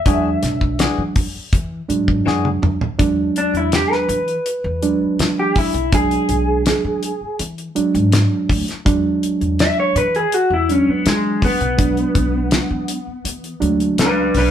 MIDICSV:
0, 0, Header, 1, 7, 480
1, 0, Start_track
1, 0, Tempo, 732601
1, 37, Time_signature, 4, 2, 24, 8
1, 9506, End_track
2, 0, Start_track
2, 0, Title_t, "Clean electric guitar"
2, 0, Program_c, 0, 27
2, 0, Note_on_c, 0, 76, 88
2, 1220, Note_off_c, 0, 76, 0
2, 2213, Note_on_c, 0, 62, 78
2, 2324, Note_off_c, 0, 62, 0
2, 2339, Note_on_c, 0, 64, 69
2, 2445, Note_off_c, 0, 64, 0
2, 2457, Note_on_c, 0, 67, 79
2, 2571, Note_off_c, 0, 67, 0
2, 2571, Note_on_c, 0, 71, 71
2, 3501, Note_off_c, 0, 71, 0
2, 3534, Note_on_c, 0, 67, 75
2, 3643, Note_off_c, 0, 67, 0
2, 3658, Note_on_c, 0, 64, 84
2, 3883, Note_off_c, 0, 64, 0
2, 3896, Note_on_c, 0, 68, 103
2, 4823, Note_off_c, 0, 68, 0
2, 6296, Note_on_c, 0, 76, 102
2, 6408, Note_off_c, 0, 76, 0
2, 6419, Note_on_c, 0, 73, 87
2, 6526, Note_off_c, 0, 73, 0
2, 6536, Note_on_c, 0, 71, 88
2, 6647, Note_off_c, 0, 71, 0
2, 6657, Note_on_c, 0, 68, 94
2, 6775, Note_off_c, 0, 68, 0
2, 6775, Note_on_c, 0, 66, 88
2, 6887, Note_off_c, 0, 66, 0
2, 6903, Note_on_c, 0, 64, 76
2, 7022, Note_off_c, 0, 64, 0
2, 7022, Note_on_c, 0, 61, 83
2, 7140, Note_off_c, 0, 61, 0
2, 7140, Note_on_c, 0, 59, 87
2, 7247, Note_off_c, 0, 59, 0
2, 7261, Note_on_c, 0, 56, 80
2, 7485, Note_off_c, 0, 56, 0
2, 7499, Note_on_c, 0, 59, 89
2, 8904, Note_off_c, 0, 59, 0
2, 9174, Note_on_c, 0, 62, 79
2, 9178, Note_on_c, 0, 71, 88
2, 9403, Note_off_c, 0, 71, 0
2, 9408, Note_off_c, 0, 62, 0
2, 9415, Note_on_c, 0, 62, 71
2, 9424, Note_on_c, 0, 71, 75
2, 9506, Note_off_c, 0, 62, 0
2, 9506, Note_off_c, 0, 71, 0
2, 9506, End_track
3, 0, Start_track
3, 0, Title_t, "Clean electric guitar"
3, 0, Program_c, 1, 27
3, 37, Note_on_c, 1, 52, 64
3, 42, Note_on_c, 1, 62, 69
3, 47, Note_on_c, 1, 66, 69
3, 52, Note_on_c, 1, 68, 79
3, 183, Note_off_c, 1, 52, 0
3, 185, Note_off_c, 1, 62, 0
3, 188, Note_off_c, 1, 66, 0
3, 190, Note_off_c, 1, 68, 0
3, 519, Note_on_c, 1, 52, 80
3, 523, Note_on_c, 1, 62, 90
3, 526, Note_on_c, 1, 66, 82
3, 532, Note_on_c, 1, 68, 87
3, 664, Note_off_c, 1, 52, 0
3, 666, Note_off_c, 1, 62, 0
3, 667, Note_off_c, 1, 66, 0
3, 671, Note_off_c, 1, 68, 0
3, 1480, Note_on_c, 1, 52, 84
3, 1486, Note_on_c, 1, 62, 80
3, 1490, Note_on_c, 1, 66, 85
3, 1493, Note_on_c, 1, 68, 102
3, 1625, Note_off_c, 1, 52, 0
3, 1628, Note_off_c, 1, 62, 0
3, 1630, Note_off_c, 1, 66, 0
3, 1631, Note_off_c, 1, 68, 0
3, 9506, End_track
4, 0, Start_track
4, 0, Title_t, "Reed electric piano"
4, 0, Program_c, 2, 4
4, 43, Note_on_c, 2, 62, 79
4, 44, Note_on_c, 2, 54, 69
4, 44, Note_on_c, 2, 56, 67
4, 819, Note_off_c, 2, 54, 0
4, 819, Note_off_c, 2, 56, 0
4, 819, Note_off_c, 2, 62, 0
4, 1236, Note_on_c, 2, 54, 76
4, 1237, Note_on_c, 2, 56, 76
4, 1238, Note_on_c, 2, 62, 85
4, 1822, Note_off_c, 2, 54, 0
4, 1823, Note_off_c, 2, 56, 0
4, 1823, Note_off_c, 2, 62, 0
4, 1955, Note_on_c, 2, 54, 75
4, 1958, Note_on_c, 2, 56, 77
4, 1958, Note_on_c, 2, 62, 100
4, 2735, Note_off_c, 2, 54, 0
4, 2737, Note_off_c, 2, 56, 0
4, 2737, Note_off_c, 2, 62, 0
4, 3160, Note_on_c, 2, 54, 76
4, 3161, Note_on_c, 2, 56, 72
4, 3163, Note_on_c, 2, 62, 92
4, 3745, Note_off_c, 2, 54, 0
4, 3745, Note_off_c, 2, 56, 0
4, 3746, Note_off_c, 2, 62, 0
4, 3880, Note_on_c, 2, 54, 68
4, 3883, Note_on_c, 2, 56, 62
4, 3884, Note_on_c, 2, 62, 84
4, 4659, Note_off_c, 2, 54, 0
4, 4660, Note_off_c, 2, 56, 0
4, 4660, Note_off_c, 2, 62, 0
4, 5081, Note_on_c, 2, 54, 83
4, 5083, Note_on_c, 2, 62, 101
4, 5084, Note_on_c, 2, 56, 74
4, 5666, Note_off_c, 2, 54, 0
4, 5666, Note_off_c, 2, 62, 0
4, 5667, Note_off_c, 2, 56, 0
4, 5801, Note_on_c, 2, 54, 86
4, 5803, Note_on_c, 2, 56, 78
4, 5807, Note_on_c, 2, 62, 100
4, 6579, Note_off_c, 2, 54, 0
4, 6581, Note_off_c, 2, 56, 0
4, 6582, Note_off_c, 2, 62, 0
4, 7003, Note_on_c, 2, 56, 55
4, 7004, Note_on_c, 2, 54, 63
4, 7004, Note_on_c, 2, 62, 74
4, 7587, Note_off_c, 2, 54, 0
4, 7587, Note_off_c, 2, 56, 0
4, 7587, Note_off_c, 2, 62, 0
4, 7715, Note_on_c, 2, 54, 65
4, 7718, Note_on_c, 2, 62, 81
4, 7719, Note_on_c, 2, 56, 62
4, 8496, Note_off_c, 2, 54, 0
4, 8498, Note_off_c, 2, 56, 0
4, 8498, Note_off_c, 2, 62, 0
4, 8913, Note_on_c, 2, 54, 89
4, 8914, Note_on_c, 2, 56, 72
4, 8915, Note_on_c, 2, 62, 95
4, 9502, Note_off_c, 2, 54, 0
4, 9502, Note_off_c, 2, 56, 0
4, 9502, Note_off_c, 2, 62, 0
4, 9506, End_track
5, 0, Start_track
5, 0, Title_t, "Upright bass"
5, 0, Program_c, 3, 32
5, 40, Note_on_c, 3, 40, 102
5, 221, Note_off_c, 3, 40, 0
5, 279, Note_on_c, 3, 35, 92
5, 553, Note_off_c, 3, 35, 0
5, 641, Note_on_c, 3, 52, 74
5, 731, Note_off_c, 3, 52, 0
5, 999, Note_on_c, 3, 52, 83
5, 1181, Note_off_c, 3, 52, 0
5, 1239, Note_on_c, 3, 44, 74
5, 1455, Note_off_c, 3, 44, 0
5, 1476, Note_on_c, 3, 42, 66
5, 1693, Note_off_c, 3, 42, 0
5, 1718, Note_on_c, 3, 40, 82
5, 1935, Note_off_c, 3, 40, 0
5, 1960, Note_on_c, 3, 40, 82
5, 2142, Note_off_c, 3, 40, 0
5, 2317, Note_on_c, 3, 40, 75
5, 2501, Note_off_c, 3, 40, 0
5, 2676, Note_on_c, 3, 52, 94
5, 2860, Note_off_c, 3, 52, 0
5, 3042, Note_on_c, 3, 40, 86
5, 3224, Note_off_c, 3, 40, 0
5, 3402, Note_on_c, 3, 52, 74
5, 3676, Note_off_c, 3, 52, 0
5, 3762, Note_on_c, 3, 35, 85
5, 4034, Note_off_c, 3, 35, 0
5, 4120, Note_on_c, 3, 35, 81
5, 4395, Note_off_c, 3, 35, 0
5, 4484, Note_on_c, 3, 52, 82
5, 4573, Note_off_c, 3, 52, 0
5, 4845, Note_on_c, 3, 52, 83
5, 5026, Note_off_c, 3, 52, 0
5, 5205, Note_on_c, 3, 44, 97
5, 5386, Note_off_c, 3, 44, 0
5, 5565, Note_on_c, 3, 38, 98
5, 5656, Note_off_c, 3, 38, 0
5, 5805, Note_on_c, 3, 40, 83
5, 5986, Note_off_c, 3, 40, 0
5, 6166, Note_on_c, 3, 40, 78
5, 6347, Note_off_c, 3, 40, 0
5, 6523, Note_on_c, 3, 52, 102
5, 6705, Note_off_c, 3, 52, 0
5, 6882, Note_on_c, 3, 40, 81
5, 7065, Note_off_c, 3, 40, 0
5, 7245, Note_on_c, 3, 52, 79
5, 7518, Note_off_c, 3, 52, 0
5, 7604, Note_on_c, 3, 35, 92
5, 7876, Note_off_c, 3, 35, 0
5, 7961, Note_on_c, 3, 35, 85
5, 8236, Note_off_c, 3, 35, 0
5, 8323, Note_on_c, 3, 52, 83
5, 8413, Note_off_c, 3, 52, 0
5, 8679, Note_on_c, 3, 52, 73
5, 8862, Note_off_c, 3, 52, 0
5, 8921, Note_on_c, 3, 38, 87
5, 9137, Note_off_c, 3, 38, 0
5, 9159, Note_on_c, 3, 37, 72
5, 9376, Note_off_c, 3, 37, 0
5, 9397, Note_on_c, 3, 35, 91
5, 9506, Note_off_c, 3, 35, 0
5, 9506, End_track
6, 0, Start_track
6, 0, Title_t, "Muted upright bass strokes"
6, 885, Note_on_c, 9, 29, 34
6, 951, Note_off_c, 9, 29, 0
6, 3285, Note_on_c, 9, 29, 36
6, 3351, Note_off_c, 9, 29, 0
6, 4725, Note_on_c, 9, 29, 35
6, 4790, Note_off_c, 9, 29, 0
6, 5086, Note_on_c, 9, 29, 36
6, 5152, Note_off_c, 9, 29, 0
6, 7129, Note_on_c, 9, 29, 34
6, 7195, Note_off_c, 9, 29, 0
6, 8561, Note_on_c, 9, 29, 35
6, 8627, Note_off_c, 9, 29, 0
6, 9506, End_track
7, 0, Start_track
7, 0, Title_t, "Drums"
7, 38, Note_on_c, 9, 36, 102
7, 38, Note_on_c, 9, 42, 76
7, 103, Note_off_c, 9, 42, 0
7, 104, Note_off_c, 9, 36, 0
7, 279, Note_on_c, 9, 42, 66
7, 285, Note_on_c, 9, 38, 33
7, 344, Note_off_c, 9, 42, 0
7, 351, Note_off_c, 9, 38, 0
7, 401, Note_on_c, 9, 36, 65
7, 467, Note_off_c, 9, 36, 0
7, 518, Note_on_c, 9, 42, 86
7, 525, Note_on_c, 9, 38, 107
7, 584, Note_off_c, 9, 42, 0
7, 590, Note_off_c, 9, 38, 0
7, 757, Note_on_c, 9, 46, 68
7, 759, Note_on_c, 9, 36, 91
7, 823, Note_off_c, 9, 46, 0
7, 825, Note_off_c, 9, 36, 0
7, 1001, Note_on_c, 9, 36, 90
7, 1002, Note_on_c, 9, 42, 84
7, 1066, Note_off_c, 9, 36, 0
7, 1067, Note_off_c, 9, 42, 0
7, 1244, Note_on_c, 9, 42, 61
7, 1309, Note_off_c, 9, 42, 0
7, 1363, Note_on_c, 9, 36, 74
7, 1429, Note_off_c, 9, 36, 0
7, 1491, Note_on_c, 9, 38, 56
7, 1556, Note_off_c, 9, 38, 0
7, 1606, Note_on_c, 9, 48, 56
7, 1671, Note_off_c, 9, 48, 0
7, 1723, Note_on_c, 9, 45, 90
7, 1789, Note_off_c, 9, 45, 0
7, 1843, Note_on_c, 9, 43, 86
7, 1909, Note_off_c, 9, 43, 0
7, 1961, Note_on_c, 9, 36, 103
7, 1961, Note_on_c, 9, 42, 76
7, 2027, Note_off_c, 9, 36, 0
7, 2027, Note_off_c, 9, 42, 0
7, 2201, Note_on_c, 9, 42, 59
7, 2267, Note_off_c, 9, 42, 0
7, 2324, Note_on_c, 9, 42, 34
7, 2389, Note_off_c, 9, 42, 0
7, 2438, Note_on_c, 9, 42, 76
7, 2445, Note_on_c, 9, 38, 100
7, 2504, Note_off_c, 9, 42, 0
7, 2510, Note_off_c, 9, 38, 0
7, 2568, Note_on_c, 9, 38, 32
7, 2634, Note_off_c, 9, 38, 0
7, 2682, Note_on_c, 9, 42, 61
7, 2747, Note_off_c, 9, 42, 0
7, 2803, Note_on_c, 9, 42, 35
7, 2869, Note_off_c, 9, 42, 0
7, 2921, Note_on_c, 9, 42, 78
7, 2987, Note_off_c, 9, 42, 0
7, 3161, Note_on_c, 9, 42, 56
7, 3227, Note_off_c, 9, 42, 0
7, 3403, Note_on_c, 9, 42, 81
7, 3410, Note_on_c, 9, 38, 105
7, 3468, Note_off_c, 9, 42, 0
7, 3475, Note_off_c, 9, 38, 0
7, 3640, Note_on_c, 9, 46, 88
7, 3642, Note_on_c, 9, 36, 83
7, 3706, Note_off_c, 9, 46, 0
7, 3707, Note_off_c, 9, 36, 0
7, 3762, Note_on_c, 9, 42, 41
7, 3828, Note_off_c, 9, 42, 0
7, 3882, Note_on_c, 9, 36, 110
7, 3882, Note_on_c, 9, 42, 82
7, 3947, Note_off_c, 9, 42, 0
7, 3948, Note_off_c, 9, 36, 0
7, 4005, Note_on_c, 9, 42, 39
7, 4070, Note_off_c, 9, 42, 0
7, 4120, Note_on_c, 9, 42, 55
7, 4186, Note_off_c, 9, 42, 0
7, 4362, Note_on_c, 9, 42, 87
7, 4369, Note_on_c, 9, 38, 104
7, 4428, Note_off_c, 9, 42, 0
7, 4434, Note_off_c, 9, 38, 0
7, 4603, Note_on_c, 9, 42, 70
7, 4669, Note_off_c, 9, 42, 0
7, 4845, Note_on_c, 9, 42, 84
7, 4910, Note_off_c, 9, 42, 0
7, 4968, Note_on_c, 9, 42, 36
7, 5033, Note_off_c, 9, 42, 0
7, 5084, Note_on_c, 9, 42, 61
7, 5150, Note_off_c, 9, 42, 0
7, 5209, Note_on_c, 9, 42, 43
7, 5274, Note_off_c, 9, 42, 0
7, 5323, Note_on_c, 9, 42, 93
7, 5330, Note_on_c, 9, 38, 113
7, 5389, Note_off_c, 9, 42, 0
7, 5395, Note_off_c, 9, 38, 0
7, 5566, Note_on_c, 9, 36, 84
7, 5569, Note_on_c, 9, 46, 93
7, 5631, Note_off_c, 9, 36, 0
7, 5634, Note_off_c, 9, 46, 0
7, 5688, Note_on_c, 9, 42, 40
7, 5695, Note_on_c, 9, 38, 36
7, 5754, Note_off_c, 9, 42, 0
7, 5760, Note_off_c, 9, 38, 0
7, 5805, Note_on_c, 9, 36, 105
7, 5807, Note_on_c, 9, 42, 77
7, 5871, Note_off_c, 9, 36, 0
7, 5873, Note_off_c, 9, 42, 0
7, 6049, Note_on_c, 9, 42, 54
7, 6114, Note_off_c, 9, 42, 0
7, 6168, Note_on_c, 9, 42, 33
7, 6234, Note_off_c, 9, 42, 0
7, 6286, Note_on_c, 9, 42, 80
7, 6292, Note_on_c, 9, 38, 113
7, 6351, Note_off_c, 9, 42, 0
7, 6358, Note_off_c, 9, 38, 0
7, 6526, Note_on_c, 9, 42, 64
7, 6592, Note_off_c, 9, 42, 0
7, 6648, Note_on_c, 9, 42, 35
7, 6714, Note_off_c, 9, 42, 0
7, 6764, Note_on_c, 9, 42, 73
7, 6830, Note_off_c, 9, 42, 0
7, 7007, Note_on_c, 9, 42, 56
7, 7072, Note_off_c, 9, 42, 0
7, 7244, Note_on_c, 9, 42, 82
7, 7251, Note_on_c, 9, 38, 100
7, 7310, Note_off_c, 9, 42, 0
7, 7316, Note_off_c, 9, 38, 0
7, 7484, Note_on_c, 9, 36, 77
7, 7485, Note_on_c, 9, 46, 80
7, 7549, Note_off_c, 9, 36, 0
7, 7550, Note_off_c, 9, 46, 0
7, 7606, Note_on_c, 9, 42, 43
7, 7671, Note_off_c, 9, 42, 0
7, 7721, Note_on_c, 9, 42, 83
7, 7723, Note_on_c, 9, 36, 97
7, 7787, Note_off_c, 9, 42, 0
7, 7788, Note_off_c, 9, 36, 0
7, 7844, Note_on_c, 9, 42, 32
7, 7909, Note_off_c, 9, 42, 0
7, 7962, Note_on_c, 9, 36, 78
7, 7962, Note_on_c, 9, 42, 61
7, 8027, Note_off_c, 9, 36, 0
7, 8027, Note_off_c, 9, 42, 0
7, 8197, Note_on_c, 9, 42, 78
7, 8204, Note_on_c, 9, 38, 123
7, 8263, Note_off_c, 9, 42, 0
7, 8269, Note_off_c, 9, 38, 0
7, 8441, Note_on_c, 9, 42, 75
7, 8506, Note_off_c, 9, 42, 0
7, 8683, Note_on_c, 9, 42, 88
7, 8748, Note_off_c, 9, 42, 0
7, 8806, Note_on_c, 9, 42, 37
7, 8871, Note_off_c, 9, 42, 0
7, 8923, Note_on_c, 9, 42, 60
7, 8988, Note_off_c, 9, 42, 0
7, 9043, Note_on_c, 9, 42, 42
7, 9109, Note_off_c, 9, 42, 0
7, 9162, Note_on_c, 9, 42, 87
7, 9168, Note_on_c, 9, 38, 108
7, 9227, Note_off_c, 9, 42, 0
7, 9234, Note_off_c, 9, 38, 0
7, 9399, Note_on_c, 9, 46, 76
7, 9464, Note_off_c, 9, 46, 0
7, 9506, End_track
0, 0, End_of_file